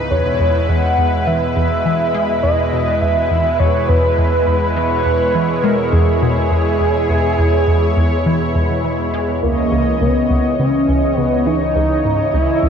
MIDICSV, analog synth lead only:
0, 0, Header, 1, 2, 480
1, 0, Start_track
1, 0, Tempo, 582524
1, 86, Time_signature, 4, 2, 24, 8
1, 10457, End_track
2, 0, Start_track
2, 0, Title_t, "Analog synth lead"
2, 0, Program_c, 0, 81
2, 87, Note_on_c, 0, 73, 105
2, 567, Note_on_c, 0, 78, 109
2, 579, Note_off_c, 0, 73, 0
2, 1045, Note_on_c, 0, 76, 115
2, 1057, Note_off_c, 0, 78, 0
2, 1997, Note_off_c, 0, 76, 0
2, 2002, Note_on_c, 0, 75, 105
2, 2483, Note_on_c, 0, 76, 103
2, 2495, Note_off_c, 0, 75, 0
2, 2963, Note_on_c, 0, 73, 100
2, 2975, Note_off_c, 0, 76, 0
2, 3201, Note_on_c, 0, 71, 103
2, 3213, Note_off_c, 0, 73, 0
2, 3917, Note_off_c, 0, 71, 0
2, 3922, Note_on_c, 0, 71, 101
2, 4644, Note_on_c, 0, 70, 85
2, 4656, Note_off_c, 0, 71, 0
2, 4883, Note_on_c, 0, 68, 88
2, 4896, Note_off_c, 0, 70, 0
2, 7285, Note_off_c, 0, 68, 0
2, 7769, Note_on_c, 0, 58, 94
2, 8214, Note_off_c, 0, 58, 0
2, 8249, Note_on_c, 0, 59, 93
2, 8694, Note_off_c, 0, 59, 0
2, 8729, Note_on_c, 0, 61, 103
2, 9223, Note_off_c, 0, 61, 0
2, 9223, Note_on_c, 0, 59, 103
2, 9449, Note_on_c, 0, 63, 113
2, 9461, Note_off_c, 0, 59, 0
2, 10164, Note_off_c, 0, 63, 0
2, 10169, Note_on_c, 0, 64, 106
2, 10457, Note_off_c, 0, 64, 0
2, 10457, End_track
0, 0, End_of_file